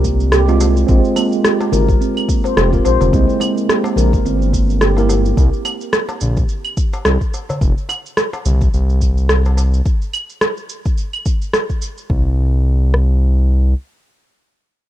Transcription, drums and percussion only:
0.04 kick, shaker
0.20 shaker
0.32 cross-stick, shaker
0.48 darbuka ka, shaker
0.61 darbuka tek, shaker
0.77 shaker
0.88 kick, shaker
1.04 shaker
1.16 darbuka ka, darbuka tek, claves, shaker
1.33 shaker
1.44 cross-stick, shaker
1.61 darbuka tek, shaker
1.72 darbuka dum, shaker
1.89 kick, shaker
2.02 shaker
2.17 claves, shaker
2.29 kick, shaker
2.44 darbuka tek, shaker
2.57 cross-stick, shaker
2.73 kick, shaker
2.85 darbuka tek, shaker
3.01 darbuka ka, darbuka tek, darbuka dum, shaker
3.13 kick, shaker
3.29 shaker
3.40 darbuka ka, darbuka tek, claves, shaker
3.57 shaker
3.69 cross-stick, shaker
3.84 darbuka tek, shaker
3.96 darbuka dum, shaker
4.13 kick, shaker
4.26 shaker
4.42 shaker
4.53 kick, shaker
4.70 shaker
4.81 cross-stick, shaker
4.97 darbuka ka, shaker
5.09 darbuka tek, shaker
5.26 shaker
5.37 kick, shaker
5.53 shaker
5.65 darbuka ka, claves, shaker
5.81 shaker
5.93 cross-stick, shaker
6.09 darbuka tek, shaker
6.21 darbuka dum, shaker
6.37 kick, shaker
6.49 shaker
6.65 claves, shaker
6.77 kick, shaker
6.93 darbuka tek, shaker
7.05 cross-stick, shaker
7.21 kick, shaker
7.34 darbuka tek, shaker
7.49 darbuka ka, darbuka tek, darbuka dum, shaker
7.61 kick, shaker
7.78 shaker
7.89 darbuka ka, darbuka tek, claves, shaker
8.06 shaker
8.17 cross-stick, shaker
8.33 darbuka tek, shaker
8.45 darbuka dum, shaker
8.61 kick, shaker
8.74 shaker
8.90 shaker
9.01 kick, shaker
9.18 shaker
9.29 cross-stick, shaker
9.45 darbuka ka, shaker
9.57 darbuka tek, shaker
9.74 shaker
9.86 kick, shaker
10.02 shaker
10.13 claves, shaker
10.30 shaker
10.41 cross-stick, shaker
10.57 shaker
10.69 shaker
10.86 kick, shaker
10.98 shaker
11.13 claves, shaker
11.26 kick, shaker
11.42 shaker
11.53 cross-stick, shaker
11.70 kick, shaker
11.82 shaker
11.98 shaker
12.10 kick
12.94 cross-stick

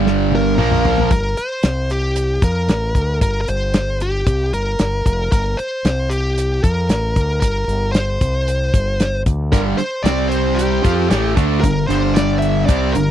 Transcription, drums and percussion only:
0.07 snare
0.32 high tom
0.58 mid tom
0.71 mid tom
0.85 floor tom
0.98 floor tom
1.11 kick, closed hi-hat
1.37 closed hi-hat
1.63 snare, closed hi-hat
1.90 closed hi-hat
2.16 closed hi-hat
2.42 kick, closed hi-hat
2.69 snare, closed hi-hat
2.95 kick, closed hi-hat
3.21 kick, closed hi-hat
3.48 closed hi-hat
3.74 snare, closed hi-hat
4.00 closed hi-hat
4.27 kick, closed hi-hat
4.54 closed hi-hat
4.79 snare, closed hi-hat
5.06 kick, closed hi-hat
5.32 kick, closed hi-hat
5.59 closed hi-hat
5.85 snare, closed hi-hat
6.11 closed hi-hat
6.38 closed hi-hat
6.64 kick, closed hi-hat
6.89 snare, closed hi-hat
7.16 kick, closed hi-hat
7.42 kick, closed hi-hat
7.69 closed hi-hat
7.94 snare, closed hi-hat
8.21 kick, closed hi-hat
8.48 closed hi-hat
8.74 kick, closed hi-hat
9.00 snare, closed hi-hat
9.26 kick, closed hi-hat
9.53 kick, closed hi-hat
9.79 closed hi-hat
10.05 snare, closed hi-hat
10.32 closed hi-hat
10.59 closed hi-hat
10.85 kick, closed hi-hat
11.11 snare, closed hi-hat
11.37 kick, closed hi-hat
11.64 kick, closed hi-hat
11.90 closed hi-hat
12.16 snare, closed hi-hat
12.42 closed hi-hat
12.68 kick, closed hi-hat
12.95 closed hi-hat

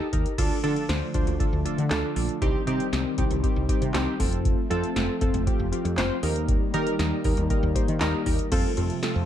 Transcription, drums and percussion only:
0.13 kick, closed hi-hat
0.26 closed hi-hat
0.38 kick, closed hi-hat, crash
0.64 closed hi-hat
0.76 closed hi-hat
0.89 snare, closed hi-hat
1.14 kick, closed hi-hat
1.27 closed hi-hat
1.40 kick, closed hi-hat
1.66 closed hi-hat
1.78 closed hi-hat
1.91 snare, clap, closed hi-hat
2.16 open hi-hat
2.29 closed hi-hat
2.42 kick, closed hi-hat
2.67 closed hi-hat
2.80 closed hi-hat
2.93 snare, closed hi-hat
3.18 kick, closed hi-hat
3.31 closed hi-hat
3.44 kick, closed hi-hat
3.69 kick, closed hi-hat
3.82 closed hi-hat
3.94 snare, clap, closed hi-hat
4.20 kick, open hi-hat
4.33 closed hi-hat
4.45 kick, closed hi-hat
4.71 closed hi-hat
4.84 closed hi-hat
4.96 snare, closed hi-hat
5.21 kick, closed hi-hat
5.34 closed hi-hat
5.47 kick, closed hi-hat
5.73 closed hi-hat
5.85 closed hi-hat
5.98 snare, clap, closed hi-hat
6.23 open hi-hat
6.36 closed hi-hat
6.48 kick, closed hi-hat
6.74 closed hi-hat
6.87 closed hi-hat
6.99 snare, closed hi-hat
7.24 kick, open hi-hat
7.37 closed hi-hat
7.50 kick, closed hi-hat
7.76 kick, closed hi-hat
7.88 closed hi-hat
8.01 snare, clap, closed hi-hat
8.26 kick, open hi-hat
8.39 closed hi-hat
8.52 kick, closed hi-hat, crash
8.77 closed hi-hat
8.90 closed hi-hat
9.03 snare, closed hi-hat

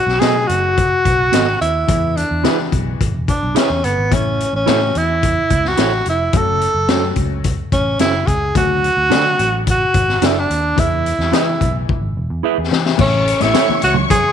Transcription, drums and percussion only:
0.08 snare
0.21 snare, closed hi-hat
0.49 closed hi-hat
0.78 kick, closed hi-hat
1.05 kick, closed hi-hat
1.33 snare, closed hi-hat
1.62 closed hi-hat
1.88 kick, closed hi-hat
2.17 closed hi-hat
2.44 snare, closed hi-hat
2.72 kick, closed hi-hat
3.01 kick, closed hi-hat
3.28 kick, closed hi-hat
3.56 snare, closed hi-hat
3.84 closed hi-hat
4.12 kick, closed hi-hat
4.40 closed hi-hat
4.67 snare, closed hi-hat
4.95 closed hi-hat
5.23 kick, closed hi-hat
5.50 kick, closed hi-hat
5.65 snare
5.77 snare, closed hi-hat
6.06 closed hi-hat
6.33 kick, closed hi-hat
6.61 closed hi-hat
6.88 snare, closed hi-hat
7.16 kick, closed hi-hat
7.44 kick, closed hi-hat
7.72 kick, closed hi-hat
7.99 snare, closed hi-hat
8.27 kick, closed hi-hat
8.55 kick, closed hi-hat
8.84 closed hi-hat
9.11 snare, closed hi-hat
9.39 closed hi-hat
9.67 kick, closed hi-hat
9.94 kick, closed hi-hat
10.09 snare
10.22 snare, closed hi-hat
10.50 closed hi-hat
10.78 kick, closed hi-hat
11.06 closed hi-hat
11.20 snare
11.33 snare, closed hi-hat
11.61 kick, closed hi-hat
11.89 kick
12.73 snare
12.86 snare
12.99 kick, crash, muted conga
13.28 closed hi-hat
13.41 snare, closed hi-hat
13.54 snare, closed hi-hat, muted conga
13.68 muted conga
13.82 closed hi-hat
13.94 high conga, low conga
14.10 kick, closed hi-hat, muted conga, high conga

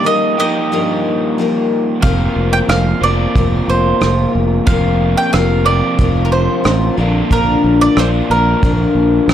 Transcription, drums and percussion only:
2.03 kick, closed hi-hat
2.69 cross-stick, closed hi-hat
3.36 kick, closed hi-hat
4.01 cross-stick, closed hi-hat
4.67 kick, closed hi-hat
5.33 cross-stick, closed hi-hat
5.99 kick, closed hi-hat
6.65 cross-stick, closed hi-hat
7.31 kick, closed hi-hat
7.96 cross-stick, closed hi-hat
8.63 kick, closed hi-hat
9.29 cross-stick, closed hi-hat

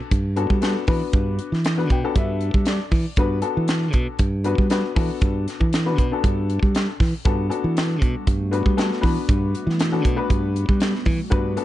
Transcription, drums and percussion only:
0.11 kick, closed hi-hat
0.37 closed hi-hat
0.50 kick
0.62 snare, closed hi-hat
0.87 kick, open hi-hat
1.13 kick, closed hi-hat
1.39 closed hi-hat
1.54 snare
1.65 snare, closed hi-hat
1.90 kick, closed hi-hat
2.15 kick, closed hi-hat
2.41 closed hi-hat
2.54 kick
2.65 snare, closed hi-hat
2.91 kick, open hi-hat
3.16 kick, closed hi-hat
3.42 closed hi-hat
3.68 snare, closed hi-hat
3.93 kick, closed hi-hat
4.19 kick, closed hi-hat
4.44 closed hi-hat
4.58 kick
4.70 snare, closed hi-hat
4.96 kick, open hi-hat
5.21 kick, closed hi-hat
5.48 snare, closed hi-hat
5.61 kick
5.73 snare, closed hi-hat
5.98 kick, closed hi-hat
6.24 kick, closed hi-hat
6.50 closed hi-hat
6.63 kick
6.75 snare, closed hi-hat
7.00 kick, snare, open hi-hat
7.25 kick, closed hi-hat
7.51 closed hi-hat
7.77 snare, closed hi-hat
8.02 kick, closed hi-hat
8.27 kick, closed hi-hat
8.53 closed hi-hat
8.66 kick
8.78 snare, closed hi-hat
8.93 snare
9.03 kick, open hi-hat
9.29 kick, closed hi-hat
9.55 closed hi-hat
9.69 snare
9.79 snare, closed hi-hat
10.05 kick, closed hi-hat
10.30 kick, closed hi-hat
10.56 closed hi-hat
10.69 kick
10.80 snare, closed hi-hat
10.95 snare
11.05 kick, open hi-hat
11.31 kick, closed hi-hat
11.57 closed hi-hat

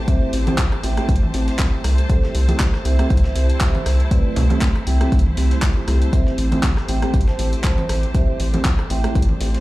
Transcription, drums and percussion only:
0.08 kick, closed hi-hat
0.33 closed hi-hat, open hi-hat
0.47 closed hi-hat, high conga
0.58 kick, snare, clap, closed hi-hat
0.72 cross-stick, closed hi-hat
0.83 closed hi-hat, open hi-hat
0.97 cross-stick, closed hi-hat
1.09 kick, closed hi-hat
1.16 closed hi-hat
1.23 high conga
1.34 snare, closed hi-hat, open hi-hat
1.48 snare, closed hi-hat
1.59 kick, snare, clap, closed hi-hat, open hi-hat
1.84 cross-stick, snare, closed hi-hat, open hi-hat
1.98 closed hi-hat
2.09 kick, closed hi-hat
2.23 snare
2.35 closed hi-hat, open hi-hat
2.49 closed hi-hat, high conga
2.60 kick, snare, clap, closed hi-hat
2.74 cross-stick, snare
2.85 closed hi-hat, open hi-hat
2.99 cross-stick, closed hi-hat
3.10 kick, closed hi-hat
3.17 closed hi-hat
3.24 snare
3.36 closed hi-hat, open hi-hat
3.49 closed hi-hat
3.61 kick, snare, clap, closed hi-hat
3.75 closed hi-hat, high conga
3.86 cross-stick, snare, closed hi-hat, open hi-hat
4.00 closed hi-hat
4.11 kick, closed hi-hat
4.36 closed hi-hat, open hi-hat, low conga
4.50 closed hi-hat, high conga
4.61 kick, snare, clap, closed hi-hat
4.75 cross-stick, closed hi-hat
4.87 closed hi-hat, open hi-hat
5.01 cross-stick, closed hi-hat
5.12 kick, closed hi-hat
5.19 closed hi-hat
5.26 high conga
5.37 snare, closed hi-hat, open hi-hat
5.51 snare, closed hi-hat
5.62 kick, snare, clap, closed hi-hat, open hi-hat
5.88 cross-stick, snare, closed hi-hat, open hi-hat
6.02 closed hi-hat
6.13 kick, closed hi-hat
6.27 snare
6.38 closed hi-hat, open hi-hat
6.52 closed hi-hat, high conga
6.63 kick, snare, clap, closed hi-hat
6.77 cross-stick, snare
6.88 closed hi-hat, open hi-hat
7.02 cross-stick, closed hi-hat
7.14 kick, closed hi-hat
7.21 closed hi-hat
7.28 snare
7.39 closed hi-hat, open hi-hat
7.53 closed hi-hat
7.64 kick, snare, clap, closed hi-hat
7.78 closed hi-hat, high conga
7.89 cross-stick, snare, closed hi-hat, open hi-hat
8.03 closed hi-hat
8.14 kick, closed hi-hat
8.40 closed hi-hat, open hi-hat
8.54 closed hi-hat, high conga
8.65 kick, snare, clap, closed hi-hat
8.79 cross-stick, closed hi-hat
8.90 closed hi-hat, open hi-hat
9.04 cross-stick, closed hi-hat
9.15 kick, closed hi-hat
9.22 closed hi-hat
9.29 high conga
9.41 snare, closed hi-hat, open hi-hat
9.54 snare, closed hi-hat

